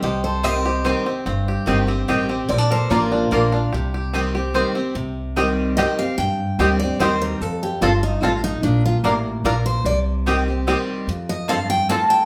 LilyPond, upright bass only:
\new Staff \with { instrumentName = "Upright bass" } { \clef bass \time 3/4 \key c \dorian \tempo 4 = 147 c,2. | g,,4 g,,4 a,,4 | bes,,4 a,,4 bes,,4 | c,2. |
c,2. | g,4 d,4 ees,4 | f,4 g,,4 a,,4 | bes,,4 a,,4 bes,,4 |
c,2. | f,2. | }